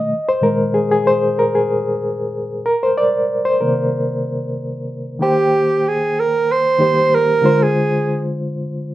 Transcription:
Already playing: reed electric piano B2 D#3 A3 D#5
0.29 reed electric piano C5
0.41 reed electric piano A#2 D#3 G#3 A#4
0.74 reed electric piano G#4
0.92 reed electric piano G#4
1.07 reed electric piano C5
1.39 reed electric piano A#4
1.55 reed electric piano G#4
2.66 reed electric piano A#4
2.83 reed electric piano C5
2.98 reed electric piano D5
3.45 reed electric piano C5
3.61 reed electric piano C3 D#3 A#3 A#4
5.19 reed electric piano D#3 A#3 C5 G5, alto saxophone G4
5.88 alto saxophone G#4
6.20 alto saxophone A#4
6.52 alto saxophone C5
6.79 reed electric piano D#3 A#3 G4 C5
7.14 alto saxophone A#4
7.42 reed electric piano D3 G#3 F4 C5
7.63 alto saxophone G#4

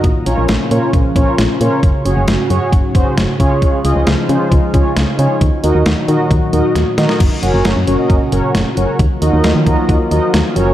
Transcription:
Already playing: analog synth pad A#2
0.04 fm bass A#1, analog synth pad C#3 F3 C#4 F4, kick, closed hi-hat
0.26 fm bass A#1, analog polysynth C#4 F4 A#4 C#5, closed hi-hat
0.38 fm bass A#1
0.49 fm bass A#1, snare, closed hi-hat
0.71 fm bass A#2, analog polysynth C#4 F4 A#4 C#5, closed hi-hat
0.93 fm bass A#1, kick, closed hi-hat
1.16 fm bass A#1, analog polysynth C#4 F4 A#4 C#5, kick, closed hi-hat
1.38 fm bass A#1, snare, closed hi-hat
1.61 fm bass A#2, analog polysynth C#4 F4 A#4 C#5, closed hi-hat
1.83 fm bass F#1, analog synth pad G#2 F#3 F#4, kick, closed hi-hat
2.05 fm bass F#1, analog polysynth C#4 F#4 G#4 C#5, closed hi-hat
2.17 fm bass F#1
2.28 fm bass F#1, snare, closed hi-hat
2.50 fm bass F#2, analog polysynth C#4 F#4 G#4 C#5, closed hi-hat
2.73 fm bass F#1, kick, closed hi-hat
2.95 fm bass F#1, analog polysynth C#4 F#4 G#4 C5, kick, closed hi-hat
3.17 fm bass F#1, snare, closed hi-hat
3.40 fm bass C#3, analog synth pad F3 G#3 D#4 F4, analog polysynth C#4 F4 G#4 C#5, kick, closed hi-hat
3.62 kick, closed hi-hat
3.84 fm bass C#2, analog polysynth C#4 F4 G#4 D#5, closed hi-hat
3.96 fm bass C#2
4.07 fm bass C#2, snare, closed hi-hat
4.29 fm bass C#3, analog polysynth C#4 F4 G#4 C5, closed hi-hat
4.52 fm bass C#2, kick, closed hi-hat
4.74 fm bass C#2, analog polysynth C#4 F4 G#4 C#5, kick, closed hi-hat
4.96 fm bass C#2, snare, closed hi-hat
5.19 fm bass C#3, analog polysynth C#4 F4 G#4 C#5, closed hi-hat
5.41 fm bass D#2, analog synth pad A#2 D#3 F#3 D#4 F#4, kick, closed hi-hat
5.64 fm bass D#2, analog polysynth D#4 F#4 A#4 D#5, closed hi-hat
5.75 fm bass D#2
5.86 fm bass D#2, snare, closed hi-hat
6.08 fm bass D#3, analog polysynth D#4 F#4 A#4 D#5, closed hi-hat
6.31 fm bass D#2, kick, closed hi-hat
6.53 fm bass D#2, analog polysynth D#4 F#4 A#4 D#5, closed hi-hat
6.75 fm bass D#2, snare, closed hi-hat
6.98 fm bass D#3, analog polysynth D#4 F#4 A#4 D#5, snare, closed hi-hat
7.09 snare
7.20 fm bass F#1, analog synth pad A#2 C#3 F#3 C#4 F#4, kick, closed hi-hat, crash
7.43 fm bass F#1, analog polysynth C#4 F#4 A#4 C#5, closed hi-hat
7.54 fm bass F#1, analog polysynth C#4 F#4 A#4 C#5
7.65 fm bass F#1, snare, closed hi-hat
7.76 fm bass F#2
7.87 fm bass F#1, analog polysynth C#4 F#4 A#4 C#5, closed hi-hat
7.99 analog polysynth C#4 F#4 A#4 D#5
8.10 fm bass F#1, kick, closed hi-hat
8.32 fm bass F#1, analog polysynth C#4 F#4 A#4 C#5, closed hi-hat
8.55 fm bass F#1, snare, closed hi-hat
8.77 fm bass F#1, analog polysynth C#4 F#4 A#4 C#5, closed hi-hat
8.99 fm bass D#2, analog synth pad D#3 F3 A#3 F4, kick, closed hi-hat
9.22 fm bass D#2, analog polysynth D#4 F#4 A#4 D#5, closed hi-hat
9.33 fm bass D#2, analog polysynth D#4 F#4 A#4 D#5
9.44 fm bass D#2, snare, closed hi-hat
9.55 fm bass D#3
9.67 fm bass D#2, analog polysynth D#4 F#4 A#4 D#5, kick, closed hi-hat
9.78 analog polysynth D#4 F#4 A#4 D#5
9.89 fm bass D#2, kick, closed hi-hat
10.11 fm bass D#2, analog polysynth D#4 F#4 A#4 D#5, closed hi-hat
10.34 fm bass D#2, snare, closed hi-hat
10.56 fm bass F#1, analog synth pad A#2 C#3 C#4 F#4, analog polysynth C#4 F#4 A#4 C#5, closed hi-hat

